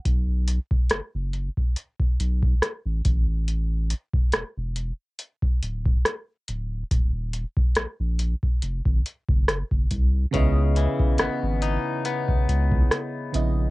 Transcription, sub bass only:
X:1
M:4/4
L:1/16
Q:"Swing 16ths" 1/4=70
K:C#m
V:1 name="Sub bass" clef=bass
B,,,3 F,,, F,,, F,,,2 z2 B,,, B,,,2 z A,,, A,,,2- | A,,,3 E,,, E,,, E,,,2 z2 =D,,, D,,,2 z2 D,,,2 | D,,,3 ^A,,, A,,, A,,,2 z ^E,,, G,,, z F,,,2 F,,, ^B,,,2 | C,,3 G,,, G,,, G,,,2 z2 C,, C,,2 z2 ^A,,,2 |]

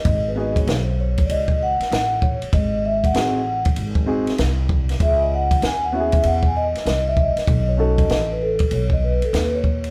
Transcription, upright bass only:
X:1
M:4/4
L:1/16
Q:"Swing 16ths" 1/4=97
K:G#phr
V:1 name="Upright bass" clef=bass
G,,,4 B,,,4 C,,3 z A,,,3 z | G,,,4 A,,,4 G,,,3 z ^B,,,4 | C,,4 D,,4 E,,3 z =C,,3 z | B,,,4 A,,,4 B,,,3 z D,,4 |]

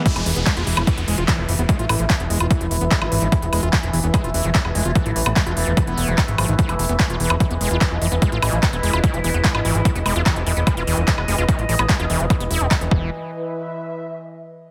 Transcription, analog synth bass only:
X:1
M:4/4
L:1/16
Q:1/4=147
K:E
V:1 name="Analog synth bass" clef=bass
z E,,, E,,, E,,, z E,,, E,,, E,,, z E,,, E,,, E,,, z E,,, =F,,, E,,, | z A,,, A,,, A,,, z E,,, E,,, E,,, z E,,, E,,, E,,, z G,,, G,,, G,,, | z E,,, E,,, E,,, z E,,, E,,, E,,, z E,,, E,,, E,,, z E,,, =F,,, E,,, | z A,,, A,,, A,,, z E,,, E,,, E,,, z E,,, E,,, E,,, z G,,, G,,, G,,, |
z E,,, E,,, E,,, z E,,, E,,, E,,, z E,,, E,,, E,,, z E,,, =F,,, E,,, | z A,,, A,,, A,,, z E,,, E,,, E,,, z E,,, E,,, E,,, z G,,, G,,, G,,, | z E,,, E,,, E,,, z E,,, E,,, E,,, z E,,, E,,, E,,, z E,,, =F,,, E,,, | z A,,, A,,, A,,, z E,,, E,,, E,,, z E,,, E,,, E,,, z E,,, E,,,2 |
z16 |]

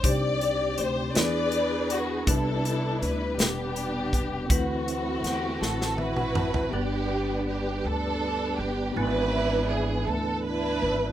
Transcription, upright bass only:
X:1
M:6/8
L:1/8
Q:3/8=54
K:G
V:1 name="Upright bass" clef=bass
C,,2 D,, E,,3 | C,,2 D,, E,,,3 | D,,2 E,, A,,,3 | G,,,3 D,,2 G,,, |
^G,,,3 D,,2 G,,, |]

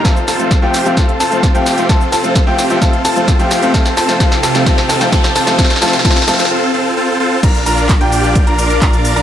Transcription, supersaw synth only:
X:1
M:4/4
L:1/16
Q:1/4=130
K:Bb
V:1 name="Supersaw synth"
[CFA]2 [CFA]3 [CFG]3 [CF]2 [CFA]3 [CFG]3 | [CFA]2 [CFA]3 [CFG]3 [CFA]2 [CFA]3 [CFG]3 | C2 [CFA]2 [CF]2 [CFA]2 [CF]2 [CFA]2 [CFA]2 [CFA]2 | [CA]2 [CFA]2 [CFA]2 [CFA]2 [CFA]2 [CFA]2 [CFA]2 [CFA]2 |
[DF]2 [DFB]3 [DFG]4 [DFB]3 [DF]3 [DFB] |]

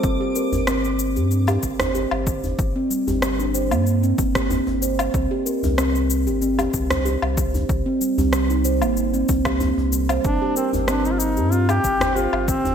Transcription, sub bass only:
X:1
M:4/4
L:1/16
Q:"Swing 16ths" 1/4=94
K:Gphr
V:1 name="Sub bass" clef=bass
G,,, z2 G,,,4 G,,3 G,,,3 G,,,3 | G,,, z2 G,,,4 G,,3 G,,,3 G,,,3 | C,, z2 C,,4 G,,,3 C,,3 C,,3 | C,, z2 C,,4 G,,,3 C,,3 C,,3 |
G,,, z2 G,,,4 G,,3 G,,,3 G,,,3 |]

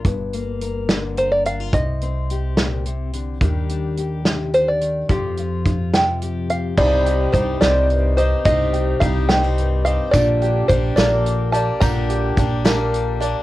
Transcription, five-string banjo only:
X:1
M:6/8
L:1/16
Q:3/8=71
K:Cdor
V:1 name="Five-string banjo"
z8 c d f2 | e6 z6 | z8 c d3 | G6 g4 f2 |
d4 c2 d4 c2 | e4 f2 g4 f2 | d4 c2 d4 a2 | b8- b2 z2 |]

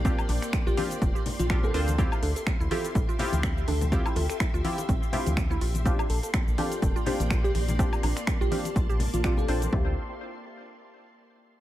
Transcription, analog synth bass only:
X:1
M:4/4
L:1/16
Q:"Swing 16ths" 1/4=124
K:Dm
V:1 name="Analog synth bass" clef=bass
B,,, z B,,, z2 B,,, z2 F,,, z2 B,,,3 D,,2- | D,, z D,, z2 D,, z2 A,,, z2 D,,3 D,,2- | D,, z D,, z2 D,, z2 A,,, z2 D,,3 B,,,2- | B,,, z B,,, z2 B,,, z2 F,,, z2 B,,,3 B,,,2- |
B,,, z B,,, z2 B,,, z2 B,,,3 B,,,3 B,,,2 | D,,2 z12 z2 |]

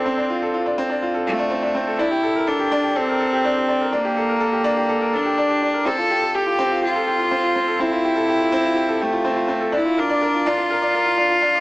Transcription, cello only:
X:1
M:4/4
L:1/8
Q:1/4=124
K:Gdor
V:1 name="Cello"
C2 z3 A,3 | E2 D2 C4 | B,4- B, D3 | A2 G2 F4 |
E4- E A,3 | E D2 F4- F |]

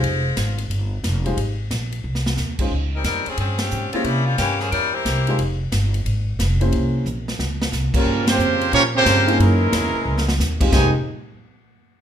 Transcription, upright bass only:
X:1
M:4/4
L:1/8
Q:"Swing" 1/4=180
K:Fm
V:1 name="Upright bass" clef=bass
F,,,2 A,,,2 G,,,2 F,,,2 | A,,,2 B,,,2 C,,2 E,,2 | D,,2 F,, z G,,2 A,, z | C,2 G,,2 =E,,2 C,,2 |
F,,,2 G,,,2 A,,,2 F,,,2 | C,,2 B,,,2 D,,2 C,, z | G,,2 F,,2 B,,2 G,,2 | _G,,2 _F,, z D,,2 E,,2 |
F,,, z6 z |]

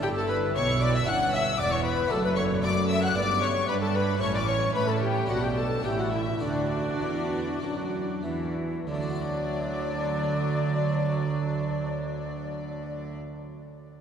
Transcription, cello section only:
X:1
M:4/4
L:1/8
Q:1/4=104
K:D
V:1 name="Cello section" clef=bass
G,,2 B,,2 G,,2 E,,2 | F,,2 F,2 G,,2 G,2 | A,,2 A,2 B,,2 A,,2 | D,2 E,2 F,2 E,2 |
D,8- | D,8 |]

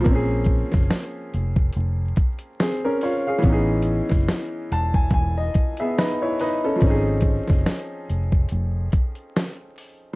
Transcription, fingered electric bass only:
X:1
M:4/4
L:1/16
Q:"Swing 16ths" 1/4=71
K:Db
V:1 name="Fingered electric bass" clef=bass
B,,,3 G,,, z2 F,,,2 F,,,2 z6 | =A,,,3 G,,, z2 =E,,,2 E,,,2 z6 | A,,,3 G,,, z2 F,,,2 F,,,2 z6 |]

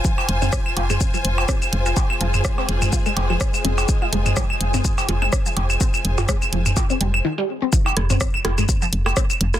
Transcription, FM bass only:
X:1
M:4/4
L:1/8
Q:"Swing 16ths" 1/4=125
K:Fm
V:1 name="FM bass" clef=bass
z F,,, z F,,, z F,,, z F,,, | z F,,, z F,,, z F,,, z F,,, | z F,,, z F,,, z F,,, z F,,, | z F,,, z F,,, z F,,, z2 |
z F,,, z F,,, z F,,, z F,,, |]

